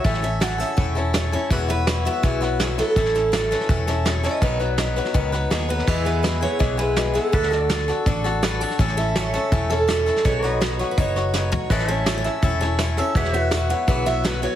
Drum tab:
CC |----------------|----------------|----------------|----------------|
HH |----p-------p---|----p-------p---|----p-------p---|----p-------p---|
SD |ooo-o-o-o-o-o-o-|o-o-o-o-o-o-o-o-|ooo-o-ooo-o-o-o-|o-o-o-ooo-o-o-oo|
FT |----------------|----------------|----------------|----------------|
BD |o-------o-------|o-------o-------|o-------o-------|o-------o-------|

CC |x---------------|----------------|----------------|----------------|
HH |----p-------p---|----p-------p---|----p-------p---|----p-------p---|
SD |o-o-o-o-o-o-o-o-|ooo-o-o-o-o-o-oo|ooo-o-o-o-o-o-oo|o-o-o-o-o-o-o---|
FT |----------------|----------------|----------------|--------------o-|
BD |o-------o-------|o-------o-------|o-------o-------|o-------o-------|

CC |x---------------|----------------|
HH |----p-------p---|----p-------p---|
SD |ooo-o-o-o-o-o-o-|ooo-o-o-o-o-o-o-|
FT |----------------|----------------|
BD |o-------o-------|o-------o-------|